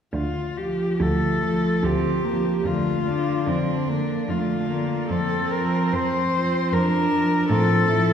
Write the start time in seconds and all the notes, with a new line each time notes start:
0.13 D2 F4
0.58 F3 G4
1.00 D2 A3 A4
1.44 F3
1.83 D2 C4 G4
2.24 F3 A#3
2.59 G4
2.64 F2 D3 A3 F4
3.06 D3 D4
3.47 F2 C4 D4
3.88 D3 A#3
4.28 F2 A3 F4
4.70 D3 A#3
5.10 F2 C4 A4
5.51 F3 A#4
5.93 F2 C5
6.33 F3
6.72 F2 D4 A#4
7.13 F3
7.50 A2 F3 C4 A4
7.89 F3 E4